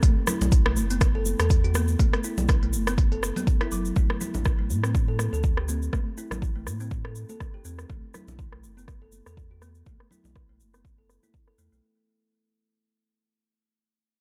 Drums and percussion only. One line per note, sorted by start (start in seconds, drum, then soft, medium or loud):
0.02 kick loud
0.02 closed hi-hat medium
0.02 high conga medium
0.02 shaker soft
0.27 cross-stick medium
0.27 low conga medium
0.27 shaker medium
0.41 closed hi-hat soft
0.41 high conga medium
0.41 low conga loud
0.41 shaker medium
0.52 kick loud
0.52 closed hi-hat medium
0.52 shaker soft
0.66 cross-stick loud
0.76 high conga medium
0.76 shaker loud
0.90 closed hi-hat soft
0.90 shaker medium
1.01 kick loud
1.01 cross-stick medium
1.01 closed hi-hat medium
1.01 shaker soft
1.25 high conga medium
1.25 shaker loud
1.39 cross-stick medium
1.39 closed hi-hat soft
1.39 shaker medium
1.50 kick loud
1.50 closed hi-hat medium
1.50 shaker soft
1.64 closed hi-hat soft
1.74 cross-stick medium
1.74 high conga medium
1.74 shaker medium
1.88 shaker medium
1.99 kick loud
1.99 closed hi-hat medium
1.99 high conga medium
1.99 shaker soft
2.13 cross-stick medium
2.13 closed hi-hat soft
2.24 shaker medium
2.38 closed hi-hat soft
2.38 high conga medium
2.38 low conga loud
2.38 shaker medium
2.48 kick loud
2.48 cross-stick medium
2.48 closed hi-hat medium
2.48 shaker soft
2.63 closed hi-hat soft
2.73 high conga medium
2.73 shaker medium
2.87 cross-stick medium
2.87 closed hi-hat soft
2.87 shaker medium
2.97 kick loud
2.97 closed hi-hat medium
2.97 shaker soft
3.12 closed hi-hat soft
3.23 cross-stick medium
3.23 shaker medium
3.36 closed hi-hat soft
3.36 high conga medium
3.36 low conga medium
3.36 shaker medium
3.47 kick loud
3.47 closed hi-hat medium
3.47 shaker soft
3.61 cross-stick medium
3.61 closed hi-hat soft
3.71 shaker loud
3.85 shaker medium
3.96 kick loud
3.96 high conga medium
3.96 shaker soft
4.10 cross-stick medium
4.21 low conga medium
4.21 shaker medium
4.34 high conga medium
4.34 low conga loud
4.34 shaker medium
4.45 kick loud
4.45 cross-stick medium
4.45 shaker soft
4.70 high conga medium
4.70 shaker medium
4.83 cross-stick medium
4.83 shaker soft
4.95 kick loud
4.95 shaker soft
5.19 cross-stick medium
5.19 high conga medium
5.19 shaker medium
5.34 shaker medium
5.43 kick loud
5.43 shaker soft
5.57 cross-stick medium
5.68 high conga medium
5.68 shaker medium
5.82 shaker medium
5.93 kick loud
5.93 cross-stick medium
5.93 high conga medium
5.93 shaker soft
6.17 shaker medium
6.31 cross-stick medium
6.31 high conga medium
6.31 low conga medium
6.31 shaker soft
6.42 kick loud
6.42 shaker soft
6.67 cross-stick medium
6.67 high conga medium
6.67 shaker medium
6.80 shaker medium
6.91 kick loud
6.91 shaker soft
7.05 cross-stick medium
7.15 shaker medium
7.29 high conga medium
7.29 shaker medium
7.40 kick loud
7.40 cross-stick medium
7.40 shaker soft
7.65 shaker medium
7.79 cross-stick medium
7.79 shaker soft
7.89 kick loud
7.89 high conga medium
7.89 shaker soft
8.14 cross-stick medium
8.14 low conga medium
8.14 shaker medium
8.28 high conga medium
8.28 low conga loud
8.28 shaker medium
8.39 kick loud
8.39 shaker soft
8.52 cross-stick medium
8.64 high conga medium
8.64 shaker medium
8.78 shaker soft
8.88 kick loud
8.88 cross-stick medium
8.88 shaker soft
9.12 high conga medium
9.12 shaker medium
9.26 cross-stick medium
9.26 shaker medium
9.37 kick loud
9.37 shaker soft
9.62 cross-stick medium
9.62 high conga medium
9.62 shaker medium
9.75 shaker soft
9.86 kick loud
9.86 high conga medium
9.86 shaker soft
10.00 cross-stick medium
10.11 low conga medium
10.11 shaker medium
10.24 high conga medium
10.24 low conga medium
10.24 shaker soft
10.35 kick loud
10.35 cross-stick medium
10.35 shaker soft
10.60 high conga medium
10.60 shaker medium
10.74 cross-stick medium
10.74 shaker soft
10.85 kick loud
10.85 shaker soft
11.09 cross-stick medium
11.09 shaker medium
11.23 high conga medium
11.23 shaker soft
11.34 kick loud
11.34 shaker soft
11.48 cross-stick medium
11.58 shaker medium
11.73 shaker soft